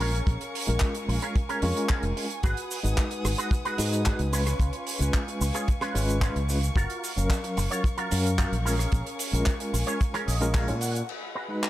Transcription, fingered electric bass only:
0, 0, Header, 1, 2, 480
1, 0, Start_track
1, 0, Tempo, 540541
1, 245, Time_signature, 4, 2, 24, 8
1, 10388, End_track
2, 0, Start_track
2, 0, Title_t, "Fingered electric bass"
2, 0, Program_c, 0, 33
2, 0, Note_on_c, 0, 34, 71
2, 176, Note_off_c, 0, 34, 0
2, 240, Note_on_c, 0, 34, 91
2, 320, Note_off_c, 0, 34, 0
2, 608, Note_on_c, 0, 34, 98
2, 683, Note_off_c, 0, 34, 0
2, 963, Note_on_c, 0, 34, 92
2, 1041, Note_off_c, 0, 34, 0
2, 1444, Note_on_c, 0, 41, 100
2, 1522, Note_off_c, 0, 41, 0
2, 1803, Note_on_c, 0, 29, 88
2, 1881, Note_off_c, 0, 29, 0
2, 2164, Note_on_c, 0, 32, 96
2, 2242, Note_off_c, 0, 32, 0
2, 2526, Note_on_c, 0, 32, 102
2, 2602, Note_off_c, 0, 32, 0
2, 2884, Note_on_c, 0, 32, 95
2, 2962, Note_off_c, 0, 32, 0
2, 3364, Note_on_c, 0, 44, 78
2, 3656, Note_off_c, 0, 44, 0
2, 3725, Note_on_c, 0, 37, 77
2, 4016, Note_off_c, 0, 37, 0
2, 4082, Note_on_c, 0, 37, 88
2, 4161, Note_off_c, 0, 37, 0
2, 4443, Note_on_c, 0, 37, 95
2, 4521, Note_off_c, 0, 37, 0
2, 4805, Note_on_c, 0, 37, 98
2, 4882, Note_off_c, 0, 37, 0
2, 5287, Note_on_c, 0, 32, 81
2, 5577, Note_off_c, 0, 32, 0
2, 5647, Note_on_c, 0, 37, 77
2, 5937, Note_off_c, 0, 37, 0
2, 6000, Note_on_c, 0, 30, 97
2, 6080, Note_off_c, 0, 30, 0
2, 6370, Note_on_c, 0, 30, 104
2, 6444, Note_off_c, 0, 30, 0
2, 6730, Note_on_c, 0, 30, 100
2, 6805, Note_off_c, 0, 30, 0
2, 7211, Note_on_c, 0, 42, 82
2, 7499, Note_off_c, 0, 42, 0
2, 7568, Note_on_c, 0, 34, 79
2, 7858, Note_off_c, 0, 34, 0
2, 7926, Note_on_c, 0, 34, 92
2, 8003, Note_off_c, 0, 34, 0
2, 8287, Note_on_c, 0, 34, 104
2, 8363, Note_off_c, 0, 34, 0
2, 8647, Note_on_c, 0, 34, 100
2, 8723, Note_off_c, 0, 34, 0
2, 9127, Note_on_c, 0, 34, 92
2, 9489, Note_on_c, 0, 46, 87
2, 9503, Note_off_c, 0, 34, 0
2, 9778, Note_off_c, 0, 46, 0
2, 10388, End_track
0, 0, End_of_file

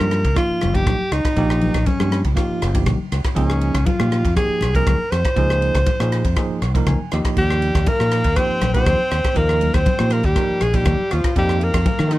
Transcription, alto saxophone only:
0, 0, Header, 1, 2, 480
1, 0, Start_track
1, 0, Tempo, 500000
1, 1309, Time_signature, 4, 2, 24, 8
1, 11699, End_track
2, 0, Start_track
2, 0, Title_t, "Alto saxophone"
2, 0, Program_c, 0, 65
2, 0, Note_on_c, 0, 70, 89
2, 322, Note_off_c, 0, 70, 0
2, 361, Note_on_c, 0, 65, 91
2, 725, Note_on_c, 0, 67, 93
2, 739, Note_off_c, 0, 65, 0
2, 1082, Note_on_c, 0, 63, 87
2, 1097, Note_off_c, 0, 67, 0
2, 1787, Note_on_c, 0, 61, 78
2, 1802, Note_off_c, 0, 63, 0
2, 2123, Note_off_c, 0, 61, 0
2, 2265, Note_on_c, 0, 65, 73
2, 2714, Note_off_c, 0, 65, 0
2, 3233, Note_on_c, 0, 61, 80
2, 3705, Note_on_c, 0, 65, 86
2, 3720, Note_off_c, 0, 61, 0
2, 4185, Note_off_c, 0, 65, 0
2, 4191, Note_on_c, 0, 68, 91
2, 4531, Note_off_c, 0, 68, 0
2, 4570, Note_on_c, 0, 70, 90
2, 4909, Note_on_c, 0, 72, 96
2, 4924, Note_off_c, 0, 70, 0
2, 6351, Note_off_c, 0, 72, 0
2, 7084, Note_on_c, 0, 67, 103
2, 7565, Note_on_c, 0, 70, 102
2, 7580, Note_off_c, 0, 67, 0
2, 8029, Note_on_c, 0, 72, 102
2, 8043, Note_off_c, 0, 70, 0
2, 8385, Note_off_c, 0, 72, 0
2, 8390, Note_on_c, 0, 72, 107
2, 8989, Note_on_c, 0, 70, 96
2, 9003, Note_off_c, 0, 72, 0
2, 9353, Note_on_c, 0, 72, 93
2, 9367, Note_off_c, 0, 70, 0
2, 9717, Note_on_c, 0, 70, 82
2, 9731, Note_off_c, 0, 72, 0
2, 9843, Note_on_c, 0, 67, 84
2, 9858, Note_off_c, 0, 70, 0
2, 10203, Note_on_c, 0, 68, 86
2, 10218, Note_off_c, 0, 67, 0
2, 10329, Note_on_c, 0, 67, 95
2, 10343, Note_off_c, 0, 68, 0
2, 10682, Note_on_c, 0, 65, 80
2, 10697, Note_off_c, 0, 67, 0
2, 10915, Note_off_c, 0, 65, 0
2, 10928, Note_on_c, 0, 67, 92
2, 11174, Note_on_c, 0, 70, 91
2, 11188, Note_off_c, 0, 67, 0
2, 11643, Note_on_c, 0, 63, 82
2, 11657, Note_off_c, 0, 70, 0
2, 11699, Note_off_c, 0, 63, 0
2, 11699, End_track
0, 0, End_of_file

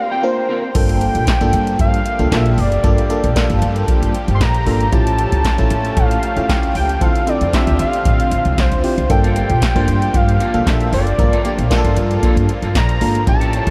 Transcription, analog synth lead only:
0, 0, Header, 1, 2, 480
1, 0, Start_track
1, 0, Tempo, 521739
1, 692, Time_signature, 4, 2, 24, 8
1, 12608, End_track
2, 0, Start_track
2, 0, Title_t, "Analog synth lead"
2, 0, Program_c, 0, 81
2, 0, Note_on_c, 0, 77, 100
2, 100, Note_off_c, 0, 77, 0
2, 106, Note_on_c, 0, 79, 92
2, 207, Note_off_c, 0, 79, 0
2, 222, Note_on_c, 0, 72, 96
2, 663, Note_off_c, 0, 72, 0
2, 700, Note_on_c, 0, 79, 123
2, 1619, Note_off_c, 0, 79, 0
2, 1662, Note_on_c, 0, 77, 114
2, 2140, Note_on_c, 0, 76, 99
2, 2154, Note_off_c, 0, 77, 0
2, 2381, Note_on_c, 0, 74, 102
2, 2395, Note_off_c, 0, 76, 0
2, 3336, Note_off_c, 0, 74, 0
2, 4000, Note_on_c, 0, 84, 85
2, 4063, Note_on_c, 0, 82, 109
2, 4077, Note_off_c, 0, 84, 0
2, 4543, Note_on_c, 0, 81, 125
2, 4556, Note_off_c, 0, 82, 0
2, 5502, Note_on_c, 0, 77, 122
2, 5515, Note_off_c, 0, 81, 0
2, 6217, Note_off_c, 0, 77, 0
2, 6223, Note_on_c, 0, 79, 106
2, 6466, Note_on_c, 0, 77, 103
2, 6480, Note_off_c, 0, 79, 0
2, 6704, Note_on_c, 0, 74, 101
2, 6718, Note_off_c, 0, 77, 0
2, 6938, Note_off_c, 0, 74, 0
2, 6945, Note_on_c, 0, 76, 102
2, 7162, Note_off_c, 0, 76, 0
2, 7184, Note_on_c, 0, 77, 122
2, 7903, Note_on_c, 0, 72, 97
2, 7917, Note_off_c, 0, 77, 0
2, 8377, Note_off_c, 0, 72, 0
2, 8382, Note_on_c, 0, 79, 123
2, 9344, Note_on_c, 0, 77, 102
2, 9358, Note_off_c, 0, 79, 0
2, 9822, Note_on_c, 0, 76, 92
2, 9836, Note_off_c, 0, 77, 0
2, 10057, Note_off_c, 0, 76, 0
2, 10064, Note_on_c, 0, 74, 106
2, 10981, Note_off_c, 0, 74, 0
2, 11746, Note_on_c, 0, 82, 122
2, 12186, Note_off_c, 0, 82, 0
2, 12224, Note_on_c, 0, 81, 124
2, 12608, Note_off_c, 0, 81, 0
2, 12608, End_track
0, 0, End_of_file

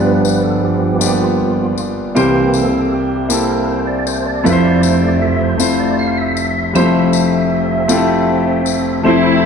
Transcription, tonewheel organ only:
0, 0, Header, 1, 2, 480
1, 0, Start_track
1, 0, Key_signature, -1, "major"
1, 0, Tempo, 765306
1, 1357, Time_signature, 6, 3, 24, 8
1, 5931, End_track
2, 0, Start_track
2, 0, Title_t, "Tonewheel organ"
2, 0, Program_c, 0, 16
2, 0, Note_on_c, 0, 43, 54
2, 0, Note_on_c, 0, 53, 47
2, 0, Note_on_c, 0, 59, 51
2, 0, Note_on_c, 0, 71, 90
2, 140, Note_off_c, 0, 71, 0
2, 157, Note_on_c, 0, 71, 76
2, 269, Note_off_c, 0, 71, 0
2, 272, Note_on_c, 0, 69, 74
2, 386, Note_off_c, 0, 69, 0
2, 397, Note_on_c, 0, 67, 95
2, 750, Note_on_c, 0, 65, 74
2, 768, Note_off_c, 0, 67, 0
2, 877, Note_off_c, 0, 43, 0
2, 880, Note_off_c, 0, 53, 0
2, 884, Note_off_c, 0, 59, 0
2, 884, Note_on_c, 0, 43, 41
2, 888, Note_on_c, 0, 53, 38
2, 891, Note_on_c, 0, 59, 45
2, 1097, Note_off_c, 0, 43, 0
2, 1099, Note_off_c, 0, 53, 0
2, 1101, Note_off_c, 0, 59, 0
2, 1208, Note_off_c, 0, 65, 0
2, 1355, Note_on_c, 0, 67, 88
2, 1358, Note_on_c, 0, 48, 53
2, 1362, Note_on_c, 0, 52, 43
2, 1366, Note_on_c, 0, 58, 53
2, 1596, Note_on_c, 0, 69, 82
2, 1603, Note_off_c, 0, 67, 0
2, 1676, Note_off_c, 0, 48, 0
2, 1679, Note_off_c, 0, 52, 0
2, 1680, Note_off_c, 0, 58, 0
2, 1831, Note_on_c, 0, 67, 89
2, 1843, Note_off_c, 0, 69, 0
2, 2077, Note_on_c, 0, 69, 83
2, 2081, Note_off_c, 0, 67, 0
2, 2191, Note_on_c, 0, 70, 80
2, 2200, Note_off_c, 0, 69, 0
2, 2309, Note_on_c, 0, 72, 74
2, 2317, Note_off_c, 0, 70, 0
2, 2429, Note_on_c, 0, 74, 82
2, 2436, Note_off_c, 0, 72, 0
2, 2549, Note_on_c, 0, 72, 84
2, 2556, Note_off_c, 0, 74, 0
2, 2669, Note_on_c, 0, 74, 87
2, 2676, Note_off_c, 0, 72, 0
2, 2791, Note_on_c, 0, 76, 91
2, 2796, Note_off_c, 0, 74, 0
2, 2796, Note_on_c, 0, 41, 58
2, 2799, Note_on_c, 0, 53, 45
2, 2800, Note_on_c, 0, 57, 55
2, 2905, Note_off_c, 0, 76, 0
2, 2907, Note_on_c, 0, 74, 82
2, 3023, Note_off_c, 0, 74, 0
2, 3024, Note_on_c, 0, 72, 91
2, 3141, Note_off_c, 0, 72, 0
2, 3146, Note_on_c, 0, 74, 74
2, 3262, Note_off_c, 0, 74, 0
2, 3272, Note_on_c, 0, 76, 90
2, 3393, Note_on_c, 0, 72, 79
2, 3398, Note_off_c, 0, 76, 0
2, 3491, Note_off_c, 0, 41, 0
2, 3492, Note_off_c, 0, 53, 0
2, 3493, Note_off_c, 0, 57, 0
2, 3636, Note_on_c, 0, 74, 78
2, 3642, Note_off_c, 0, 72, 0
2, 3748, Note_off_c, 0, 74, 0
2, 3756, Note_on_c, 0, 77, 83
2, 3873, Note_on_c, 0, 76, 103
2, 3880, Note_off_c, 0, 77, 0
2, 4209, Note_off_c, 0, 76, 0
2, 4234, Note_on_c, 0, 69, 57
2, 4235, Note_on_c, 0, 60, 51
2, 4236, Note_on_c, 0, 53, 59
2, 4238, Note_on_c, 0, 76, 59
2, 5652, Note_off_c, 0, 53, 0
2, 5652, Note_off_c, 0, 60, 0
2, 5652, Note_off_c, 0, 69, 0
2, 5654, Note_off_c, 0, 76, 0
2, 5672, Note_on_c, 0, 53, 61
2, 5673, Note_on_c, 0, 60, 58
2, 5674, Note_on_c, 0, 57, 54
2, 5674, Note_on_c, 0, 69, 59
2, 5676, Note_on_c, 0, 64, 55
2, 5931, Note_off_c, 0, 53, 0
2, 5931, Note_off_c, 0, 57, 0
2, 5931, Note_off_c, 0, 60, 0
2, 5931, Note_off_c, 0, 64, 0
2, 5931, Note_off_c, 0, 69, 0
2, 5931, End_track
0, 0, End_of_file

